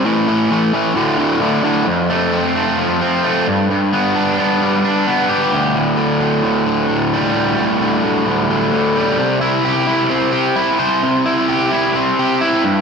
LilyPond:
\new Staff \with { instrumentName = "Overdriven electric guitar" } { \clef bass \time 4/4 \key c \lydian \tempo 4 = 131 <a, e a>8 <a, e a>8 <a, e a>8 <a, e a>8 <d, a, d>8 <d, a, d>8 <d, a, d>8 <d, a, d>8 | f,8 a8 c'8 a8 f8 c'8 a8 g,8 | g,8 b8 d'8 b8 g8 d'8 b8 g'8 | d,8 a,8 d8 a,8 d,8 d8 a,8 g8 |
d,8 a,8 d8 a,8 d,8 d8 a,8 g8 | c8 e'8 g'8 e'8 c'8 g'8 e'8 c''8 | c8 e'8 g'8 e'8 c'8 g'8 e'8 g,8 | }